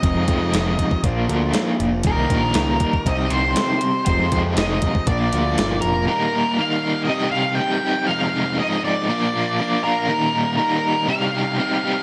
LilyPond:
<<
  \new Staff \with { instrumentName = "Lead electric guitar" } { \time 4/4 \key ees \major \tempo 4 = 120 ees''2 r2 | bes'2 ees''8 c''4. | c''8 c''8 ees''4 d''4. bes'8 | bes'4 f''4 ees''8 f''8 g''4 |
f''4 ees''8 d''2 bes'8~ | bes'4 bes'4 f''2 | }
  \new Staff \with { instrumentName = "Overdriven electric guitar" } { \time 4/4 \key ees \major <f, c f aes c' ees'>2 <bes, f bes d' f'>2 | <ees, bes, ees g bes ees'>2 <c g c' ees' g'>2 | <f, c f aes c' ees'>2 <bes, f bes d' f'>2 | <ees, bes, ees g bes ees'>8 <ees g bes ees'>8 <ees g bes ees'>4 <c g c' ees' g'>8 <c' ees' g'>8 <g c' ees' g'>8 <c' ees' g'>8 |
<f, c f aes c' ees'>8 <f aes c' ees'>8 <f aes c' ees'>4 <bes, f bes d' f'>8 <bes d' f'>8 <f bes d' f'>8 <bes d' f'>8 | <ees, bes, ees g bes ees'>8 <ees g bes ees'>8 <ees g bes ees'>4 <c g c' ees' g'>8 <c' ees' g'>8 <g c' ees' g'>8 <c' ees' g'>8 | }
  \new Staff \with { instrumentName = "Distorted electric guitar" } { \clef bass \time 4/4 \key ees \major <f, c f aes c' ees'>2 <bes, f bes d' f'>2 | <ees, bes, ees g bes ees'>2 <c g c' ees' g'>2 | <f, c f aes c' ees'>2 <bes, f bes d' f'>2 | r1 |
r1 | r1 | }
  \new Staff \with { instrumentName = "Picked electric bass" } { \clef bass \time 4/4 \key ees \major f,,16 f,16 f,8 f,,8 r8 bes,,8 d,8 r8 f,,8 | ees,,16 c,16 bes,,8 des,8 r8 c,8 c,8 r4 | f,,16 f,16 f,8 f,,8 r8 bes,,8 d,8 g,,8 f,,8 | r1 |
r1 | r1 | }
  \new DrumStaff \with { instrumentName = "Drums" } \drummode { \time 4/4 <hh bd>8 <hh bd>8 <hh sn>8 <hh bd>16 bd16 <hh bd>8 hh8 <hh sn>8 hh8 | <hh bd>8 <hh bd>8 <hh sn>8 <hh bd>16 bd16 <hh bd>8 hh8 <hh sn>8 hh8 | <hh bd>8 <hh bd>8 <hh sn>8 <hh bd>16 bd16 <hh bd>8 hh8 <hh sn>8 hh8 | r4 r4 r4 r4 |
r4 r4 r4 r4 | r4 r4 r4 r4 | }
>>